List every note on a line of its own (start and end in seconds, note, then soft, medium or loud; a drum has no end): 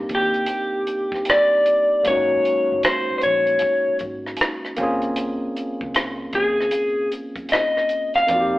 0.00 2.02 A#3 medium
0.00 2.01 C4 medium
0.00 2.02 D4 medium
0.00 2.03 D#4 medium
0.00 2.04 G4 medium
0.09 0.44 D#2 medium
0.09 kick medium
0.09 closed hi-hat soft
0.15 1.33 G4 medium
0.34 closed hi-hat soft
0.46 closed hi-hat medium
0.87 closed hi-hat medium
1.12 kick medium
1.12 cross-stick soft
1.25 closed hi-hat medium
1.30 2.07 D5 medium
1.30 cross-stick medium
1.66 closed hi-hat medium
2.03 2.40 G#1 medium
2.03 4.74 G#3 medium
2.03 4.73 A#3 medium
2.03 4.75 C#4 medium
2.03 kick medium
2.03 closed hi-hat medium
2.08 4.76 D#4 soft
2.08 4.76 F#4 medium
2.08 2.85 C#5 medium
2.45 closed hi-hat medium
2.72 2.83 F#1 medium
2.83 3.16 C5 medium
2.83 cross-stick loud
2.83 closed hi-hat medium
3.11 muted fingered electric bass stroke soft
3.18 3.23 C5 medium
3.18 closed hi-hat medium
3.23 3.57 A#1 medium
3.23 3.97 C#5 medium
3.47 closed hi-hat soft
3.59 kick medium
3.59 closed hi-hat medium
3.88 muted fingered electric bass stroke soft
3.99 4.34 G#1 medium
3.99 kick medium
3.99 closed hi-hat medium
4.26 cross-stick soft
4.37 closed hi-hat medium
4.41 cross-stick medium
4.65 cross-stick soft
4.77 5.45 D#2 medium
4.77 7.85 A#3 medium
4.77 7.86 C4 medium
4.77 7.87 C#4 medium
4.77 kick medium
4.77 closed hi-hat medium
4.82 7.88 F4 medium
4.82 7.88 G#4 medium
5.02 closed hi-hat soft
5.16 closed hi-hat medium
5.57 closed hi-hat medium
5.81 6.27 C#2 medium
5.81 kick medium
5.94 cross-stick medium
5.94 closed hi-hat medium
6.33 6.68 D#2 medium
6.33 7.09 G#4 medium
6.33 kick medium
6.33 closed hi-hat medium
6.60 cross-stick soft
6.71 closed hi-hat medium
7.12 closed hi-hat medium
7.36 kick medium
7.36 closed hi-hat soft
7.49 8.15 D#5 medium
7.49 closed hi-hat medium
7.53 cross-stick medium
7.77 cross-stick soft
7.89 closed hi-hat medium
8.14 8.59 F5 medium
8.14 cross-stick soft
8.14 closed hi-hat soft
8.27 8.59 F2 medium
8.27 8.59 A#3 medium
8.27 8.59 C4 medium
8.27 8.59 D5 medium
8.27 kick medium
8.27 closed hi-hat medium
8.32 8.59 D#4 soft
8.32 8.40 F#4 soft
8.40 8.59 G4 medium